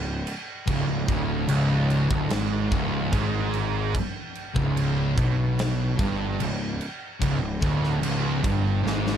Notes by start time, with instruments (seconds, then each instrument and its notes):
Already playing: picked electric bass C#1, distorted electric guitar C#2
0.27 crash
0.67 picked electric bass C#1, distorted electric guitar C#2, kick, crash
0.87 picked electric bass C#1, distorted electric guitar C#2
1.08 picked electric bass D1, distorted electric guitar D2, kick, crash
1.48 picked electric bass C#1, distorted electric guitar C#2, crash
1.90 crash
2.10 picked electric bass D1, distorted electric guitar D2, kick
2.30 picked electric bass G#1, distorted electric guitar G#2, snare, crash
2.70 picked electric bass C#1, distorted electric guitar C#2, kick, crash
3.11 picked electric bass G#1, distorted electric guitar G#2, kick, crash
3.54 crash
3.95 kick, crash
4.35 crash
4.54 picked electric bass C#1, distorted electric guitar C#2, kick
4.77 crash
5.16 picked electric bass B1, distorted electric guitar B2, kick, crash
5.59 snare, crash
5.98 picked electric bass G1, distorted electric guitar G2, kick, crash
6.39 picked electric bass C#1, distorted electric guitar C#2, crash
6.81 crash
7.20 picked electric bass C#1, distorted electric guitar C#2, kick, crash
7.40 picked electric bass C#1, distorted electric guitar C#2
7.61 picked electric bass D1, distorted electric guitar D2, kick, crash
7.84 snare
8.02 picked electric bass C#1, distorted electric guitar C#2, crash
8.43 picked electric bass G1, distorted electric guitar G2, kick, crash
8.84 picked electric bass G#1, distorted electric guitar G#2, snare
9.07 snare